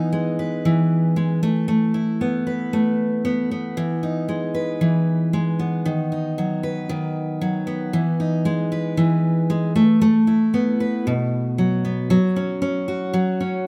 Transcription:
steel-string acoustic guitar
Already playing: E3 B3 D#4 B4
0.13 G#3
0.39 B4
0.65 E3
1.16 G#3
1.43 A3
1.68 A3
1.94 E4
2.21 B3
2.47 B4
2.73 A3
3.25 B3
3.51 B3
3.77 E3
4.03 D#4
4.28 G#3
4.54 B4
4.81 E3
5.33 G#3
5.59 B3
5.86 D#3
6.12 D#4
6.38 F#3
6.63 B4
6.89 D#3
7.41 F#3
7.67 B3
7.93 E3
8.20 D#4
8.45 G#3
8.72 B4
8.97 E3
9.50 G#3
9.76 A3
10.02 A3
10.27 E4
10.54 B3
10.80 B4
11.07 B2
11.58 F#3
11.85 B3
12.10 F#3
12.36 C#4
12.62 C#4
12.88 F#4
13.13 F#3
13.40 C#4

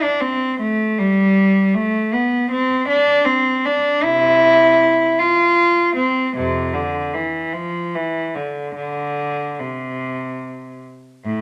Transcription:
cello
0.02 D4
0.21 C4
0.60 A3
0.98 G3
1.75 A3
2.13 B3
2.51 C4
2.88 D4
3.25 C4
3.65 D4
4.04 C3 E4
5.19 F4
5.95 C4
6.35 F2 C3
6.74 D3
7.14 E3
7.53 F3
7.95 E3
8.35 D3
8.75 D3
9.59 C3
11.25 A2

